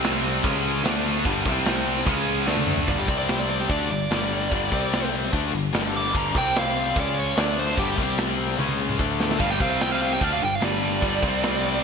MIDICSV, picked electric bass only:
0, 0, Header, 1, 2, 480
1, 0, Start_track
1, 0, Tempo, 407056
1, 1479, Time_signature, 4, 2, 24, 8
1, 13957, End_track
2, 0, Start_track
2, 0, Title_t, "Picked electric bass"
2, 0, Program_c, 0, 34
2, 0, Note_on_c, 0, 36, 95
2, 473, Note_off_c, 0, 36, 0
2, 522, Note_on_c, 0, 37, 101
2, 967, Note_off_c, 0, 37, 0
2, 994, Note_on_c, 0, 38, 99
2, 1443, Note_off_c, 0, 38, 0
2, 1480, Note_on_c, 0, 31, 87
2, 1702, Note_off_c, 0, 31, 0
2, 1722, Note_on_c, 0, 36, 96
2, 2393, Note_off_c, 0, 36, 0
2, 2435, Note_on_c, 0, 37, 97
2, 2883, Note_off_c, 0, 37, 0
2, 2918, Note_on_c, 0, 38, 87
2, 3365, Note_off_c, 0, 38, 0
2, 3397, Note_on_c, 0, 31, 80
2, 3622, Note_off_c, 0, 31, 0
2, 3633, Note_on_c, 0, 36, 93
2, 4310, Note_off_c, 0, 36, 0
2, 4357, Note_on_c, 0, 38, 91
2, 4582, Note_off_c, 0, 38, 0
2, 4604, Note_on_c, 0, 31, 75
2, 4826, Note_off_c, 0, 31, 0
2, 4845, Note_on_c, 0, 31, 94
2, 5290, Note_off_c, 0, 31, 0
2, 5328, Note_on_c, 0, 31, 93
2, 5548, Note_off_c, 0, 31, 0
2, 5569, Note_on_c, 0, 36, 95
2, 6239, Note_off_c, 0, 36, 0
2, 6287, Note_on_c, 0, 38, 93
2, 6508, Note_off_c, 0, 38, 0
2, 6524, Note_on_c, 0, 31, 79
2, 6747, Note_off_c, 0, 31, 0
2, 6761, Note_on_c, 0, 31, 90
2, 7209, Note_off_c, 0, 31, 0
2, 7249, Note_on_c, 0, 31, 85
2, 7470, Note_off_c, 0, 31, 0
2, 7486, Note_on_c, 0, 36, 100
2, 8158, Note_off_c, 0, 36, 0
2, 8206, Note_on_c, 0, 37, 98
2, 8652, Note_off_c, 0, 37, 0
2, 8695, Note_on_c, 0, 38, 97
2, 9136, Note_off_c, 0, 38, 0
2, 9171, Note_on_c, 0, 31, 91
2, 9391, Note_off_c, 0, 31, 0
2, 9412, Note_on_c, 0, 36, 91
2, 10080, Note_off_c, 0, 36, 0
2, 10128, Note_on_c, 0, 37, 93
2, 10572, Note_off_c, 0, 37, 0
2, 10606, Note_on_c, 0, 38, 89
2, 11051, Note_off_c, 0, 38, 0
2, 11083, Note_on_c, 0, 31, 92
2, 11305, Note_off_c, 0, 31, 0
2, 11323, Note_on_c, 0, 36, 92
2, 11994, Note_off_c, 0, 36, 0
2, 12042, Note_on_c, 0, 38, 96
2, 12264, Note_off_c, 0, 38, 0
2, 12271, Note_on_c, 0, 31, 77
2, 12498, Note_off_c, 0, 31, 0
2, 12521, Note_on_c, 0, 31, 92
2, 12966, Note_off_c, 0, 31, 0
2, 12998, Note_on_c, 0, 31, 89
2, 13221, Note_off_c, 0, 31, 0
2, 13235, Note_on_c, 0, 36, 103
2, 13907, Note_off_c, 0, 36, 0
2, 13957, End_track
0, 0, End_of_file